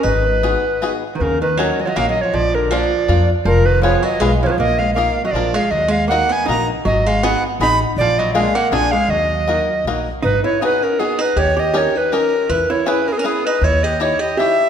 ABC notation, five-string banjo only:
X:1
M:3/4
L:1/8
Q:"Swing" 1/4=159
K:G#m
V:1 name="Five-string banjo"
z2 [B,DFG] z [B,DFG] z | [K:Ebm] z2 [DEGB] z [DEGB] z | z2 [B,=DFB] z [B,DFB] z | z2 [CFAc] z [CFAc] z |
z2 [B,EFB] z [B,=DFB] z | z2 [B,EGB] z [B,EGB] z | z2 [CEGA] z [CEGA] z | z2 [B,=DFA] z [B,DFA] z |
z2 [B,EGB] z [B,EGB] z | [K:G#m] z2 [B,DFG] z [B,DFG] z | z2 [CD=GA] z [CDGA] z | z2 [CEGB] z [CEGB] z |
z2 [DE=Gc] z [DEGc] z |]